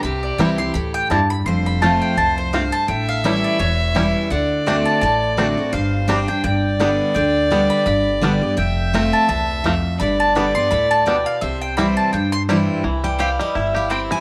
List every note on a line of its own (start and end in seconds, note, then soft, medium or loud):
0.03 0.29 C2 medium
0.03 0.72 C3 medium
0.03 1.26 G4 loud
0.03 0.22 B5 loud
0.23 0.38 D5 medium
0.38 0.69 C2 medium
0.38 0.58 E3 medium
0.38 0.48 G3 medium
0.38 0.58 G3 medium
0.38 0.59 C4 medium
0.38 0.48 C4 medium
0.38 0.49 E4 medium
0.38 0.58 E4 medium
0.38 0.58 G5 medium
0.58 0.75 C4 soft
0.58 0.74 E4 medium
0.58 0.73 C6 loud
0.74 1.05 D2 medium
0.74 1.09 A2 medium
0.74 0.94 B5 loud
0.94 1.10 G5 loud
1.10 1.41 E2 medium
1.10 1.45 G2 medium
1.10 1.19 G3 medium
1.10 1.20 C4 medium
1.10 1.20 E4 medium
1.10 1.29 A5 medium
1.30 1.45 B5 loud
1.45 1.98 F1 medium
1.45 2.15 F2 loud
1.45 2.91 C5 loud
1.45 1.65 C6 loud
1.66 1.81 B5 medium
1.82 2.16 F3 medium
1.82 1.91 A3 medium
1.82 2.16 A3 medium
1.82 1.91 C4 medium
1.82 2.17 C4 medium
1.82 1.91 F4 medium
1.82 2.17 F4 loud
1.82 2.01 A5 medium
2.02 2.17 G5 loud
2.17 2.70 C2 medium
2.17 2.52 F2 loud
2.17 2.37 A5 loud
2.38 2.53 C5 medium
2.53 2.87 G2 medium
2.53 2.62 A3 medium
2.53 2.62 C4 medium
2.53 2.62 F4 medium
2.53 2.72 F5 medium
2.72 2.88 A5 loud
2.88 3.41 A1 medium
2.88 3.56 A2 medium
2.88 4.33 E5 loud
2.88 3.08 G5 medium
3.09 3.24 F5 loud
3.24 3.58 E3 loud
3.24 3.58 G3 medium
3.24 3.34 G3 medium
3.24 3.59 C#4 medium
3.24 3.34 C#4 medium
3.24 3.59 E4 medium
3.24 3.34 E4 medium
3.24 3.43 E5 medium
3.44 3.59 D5 medium
3.59 4.12 E1 medium
3.59 4.28 E2 medium
3.59 4.11 C#5 medium
3.95 4.29 E3 medium
3.95 4.29 G3 medium
3.95 4.04 G3 medium
3.95 4.30 C#4 medium
3.95 4.04 C#4 medium
3.95 4.30 E4 loud
3.95 4.05 E4 medium
4.30 4.84 D2 medium
4.30 4.65 D3 medium
4.30 5.74 D5 loud
4.30 4.82 F#5 medium
4.66 5.00 D3 medium
4.66 5.01 A3 medium
4.66 4.75 A3 medium
4.66 4.76 C4 medium
4.66 5.01 C4 loud
4.66 4.76 D4 medium
4.66 5.01 F#4 medium
4.85 5.00 A5 medium
5.01 5.55 A1 medium
5.01 5.70 A2 loud
5.01 5.53 A5 loud
5.37 5.56 D3 medium
5.37 5.57 A3 medium
5.37 5.47 A3 medium
5.37 5.57 C4 medium
5.37 5.47 C4 medium
5.37 5.47 D4 medium
5.37 5.56 F#4 medium
5.57 5.73 C4 soft
5.57 5.73 F#4 medium
5.73 6.26 G1 medium
5.73 6.41 G2 medium
5.73 6.46 C5 loud
5.73 6.24 F5 loud
6.08 6.27 G3 loud
6.08 6.18 G3 medium
6.08 6.27 C4 medium
6.08 6.18 C4 medium
6.08 6.28 D4 loud
6.08 6.18 D4 medium
6.08 6.26 G4 loud
6.28 6.44 D4 medium
6.28 6.43 G4 medium
6.28 6.42 G5 medium
6.44 6.97 G1 medium
6.44 7.12 G2 medium
6.44 8.57 D5 loud
6.44 6.95 G5 loud
6.80 7.14 D3 medium
6.80 7.14 G3 medium
6.80 6.89 G3 medium
6.80 7.14 B3 medium
6.80 6.89 B3 medium
6.80 6.89 D4 medium
6.80 7.14 G4 medium
7.15 7.68 D2 medium
7.15 7.49 D3 loud
7.15 7.66 G5 medium
7.51 7.85 D3 medium
7.51 7.85 G3 medium
7.51 7.60 G3 medium
7.51 7.85 B3 medium
7.51 7.60 B3 medium
7.51 7.60 D4 medium
7.51 7.85 G4 medium
7.70 7.85 B5 loud
7.86 8.39 G1 loud
7.86 8.54 G2 medium
7.86 8.38 B5 loud
8.21 8.41 D3 medium
8.21 8.41 G3 medium
8.21 8.31 G3 medium
8.21 8.41 B3 medium
8.21 8.32 B3 medium
8.21 8.32 D4 medium
8.21 8.40 G4 medium
8.41 8.57 B3 soft
8.41 8.57 G4 medium
8.57 9.10 F1 medium
8.57 9.25 F2 medium
8.57 9.96 E5 loud
8.57 9.09 G5 medium
8.93 9.27 F3 medium
8.93 9.27 A3 medium
8.93 9.03 A3 medium
8.93 9.28 C4 loud
8.93 9.03 C4 medium
8.93 9.28 F4 loud
8.93 9.03 F4 medium
9.13 9.27 A5 medium
9.29 9.81 C2 medium
9.29 9.63 E2 loud
9.29 9.80 A5 loud
9.64 9.98 F2 medium
9.64 9.74 A3 medium
9.64 9.74 C4 medium
9.64 9.74 F4 medium
9.99 10.53 G1 medium
9.99 10.68 G2 medium
9.99 11.38 D5 loud
9.99 10.19 B5 loud
10.20 10.35 A5 loud
10.35 10.54 D3 medium
10.35 10.54 G3 medium
10.35 10.44 G3 medium
10.35 10.55 B3 medium
10.35 10.44 B3 medium
10.35 10.45 D4 medium
10.35 10.55 G4 loud
10.35 10.54 B5 medium
10.55 10.71 B3 medium
10.55 10.70 G4 medium
10.55 10.70 C6 loud
10.71 11.24 D2 medium
10.71 11.05 A2 loud
10.71 10.90 B5 loud
10.91 11.05 A5 loud
11.06 11.40 B2 medium
11.06 11.16 G3 medium
11.06 11.16 B3 medium
11.06 11.16 D4 medium
11.06 11.25 G5 medium
11.26 11.41 F5 loud
11.41 11.95 C2 medium
11.41 12.10 C3 medium
11.41 12.64 C5 medium
11.41 11.61 E5 medium
11.61 11.76 G5 loud
11.77 12.12 E3 medium
11.77 11.86 G3 medium
11.77 12.12 G3 medium
11.77 11.86 C4 medium
11.77 12.12 C4 medium
11.77 11.86 E4 medium
11.77 12.12 E4 medium
11.77 11.96 B5 loud
11.97 12.12 A5 loud
12.13 12.65 G2 medium
12.13 12.81 G2 medium
12.13 12.32 G5 medium
12.32 12.42 C6 loud
12.49 12.82 E3 medium
12.49 12.57 G3 medium
12.49 12.83 G3 medium
12.49 12.58 C4 medium
12.49 12.83 C4 medium
12.49 12.58 E4 medium
12.49 12.83 E4 loud
12.84 13.37 C2 medium
12.84 14.20 E3 medium
12.84 14.20 E4 loud
13.04 13.39 G3 medium
13.04 13.19 G5 medium
13.19 13.29 C4 medium
13.19 13.29 E4 medium
13.19 13.71 G4 medium
13.19 13.29 C5 medium
13.19 13.39 F5 medium
13.19 13.29 G5 medium
13.39 13.87 G3 medium
13.39 13.56 D#5 medium
13.55 14.08 G1 medium
13.55 14.06 E4 medium
13.55 13.75 E5 medium
13.75 14.20 G4 medium
13.75 13.92 F5 medium
13.90 14.00 C4 medium
13.90 14.20 C4 medium
13.90 14.00 E4 medium
13.90 14.01 C5 medium
13.90 14.01 G5 loud
13.90 14.10 G5 medium
14.11 14.20 E4 medium
14.11 14.20 G#5 loud